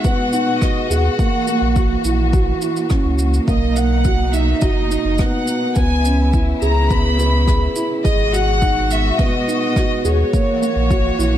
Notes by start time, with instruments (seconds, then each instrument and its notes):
Already playing: string section B2 G#3 F#4, felt piano D#4 F#4 G#4
0.04 felt piano B3, violin section F#5, kick, shaker
0.33 felt piano D#4, shaker
0.62 felt piano F#4, violin section D#5, kick, cross-stick, shaker
0.90 sub bass D#2, felt piano G#4, violin section F#5, shaker
1.19 string section E3 A#3, felt piano A#3, kick, shaker
1.47 felt piano A#3, shaker
1.61 sub bass A#1
1.76 felt piano F#4, kick, shaker
2.04 sub bass A#1, felt piano E4, shaker
2.33 felt piano F#4, kick, shaker
2.62 felt piano E4, shaker
2.76 shaker
2.90 felt piano C#4, kick, cross-stick, shaker
3.05 sub bass C#2
3.18 shaker
3.34 shaker
3.48 sub bass B1, string section B2 D#4, felt piano A#3, violin section D#5, kick, shaker
3.76 felt piano A#3, violin section F#5, shaker
4.04 felt piano F#4, kick, shaker
4.33 felt piano D#4, violin section E5, shaker
4.61 sub bass F#1, felt piano F#4, violin section D#5, kick, shaker
4.90 felt piano D#4, shaker
5.05 sub bass F#1
5.18 felt piano B3, violin section F#5, kick, cross-stick, shaker
5.47 shaker
5.75 sub bass C#2, string section C#3 B3 E4, felt piano B3, violin section G#5, kick, shaker
6.05 felt piano C#4, shaker
6.33 felt piano E4, kick, shaker
6.62 sub bass C#2, felt piano G#4, violin section A#5, shaker
6.90 felt piano B3, violin section B5, kick, shaker
7.19 felt piano B3, shaker
7.47 felt piano G#4, kick, cross-stick, shaker
7.76 felt piano E4, shaker
8.04 sub bass G#1, string section B2 G#3 F#4, felt piano G#4, violin section D#5, kick, shaker
8.33 felt piano F#4, violin section F#5, shaker
8.62 felt piano D#4, kick, shaker
8.90 violin section E5, shaker
9.19 felt piano B3, violin section D#5, kick, shaker
9.47 felt piano D#4, shaker
9.76 felt piano F#4, kick, cross-stick, shaker
10.05 sub bass D#2, felt piano G#4, violin section C#5, shaker
10.33 string section E3 A#3 F#4, felt piano A#3, kick, shaker
10.62 felt piano A#3, shaker
10.76 sub bass A#1
10.90 felt piano F#4, kick, shaker
11.19 sub bass A#1, felt piano E4, shaker